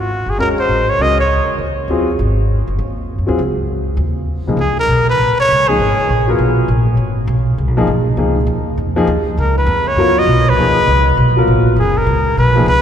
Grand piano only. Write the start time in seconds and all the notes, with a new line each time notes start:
0.39 G#3 C#4 F#4 A#4
1.00 G#3 C#4 F#4 A#4
1.90 F#3 C4 F4 G#4
3.27 F#3 C4 F4 G#4
4.48 C#2 F3 A#3 D#4 G#4
5.69 F3 A#3 D#4 G#4
6.28 F#3 B3 F4 A#4
7.77 F3 A#3 D#4 G#4
8.17 F3 A#3 D#4 G#4
8.96 F3 A#3 D#4 G#4
9.98 F#3 B3 F4 A#4
10.58 F3 A#3 D#4 G#4
11.37 F#3 B3 F4 A#4
12.56 F3 A#3 D#4 G#4